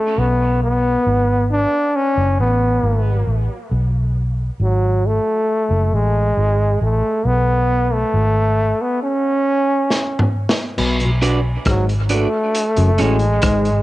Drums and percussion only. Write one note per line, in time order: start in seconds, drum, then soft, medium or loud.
9.90 snare medium
10.19 mid tom medium
10.49 snare loud
10.78 crash medium
11.00 closed hi-hat soft
11.22 closed hi-hat medium
11.65 kick medium
11.65 cross-stick loud
11.65 closed hi-hat medium
11.89 closed hi-hat soft
12.09 closed hi-hat medium
12.55 closed hi-hat medium
12.77 closed hi-hat medium
12.98 closed hi-hat medium
13.19 closed hi-hat soft
13.42 kick loud
13.42 cross-stick loud
13.42 closed hi-hat loud
13.65 closed hi-hat soft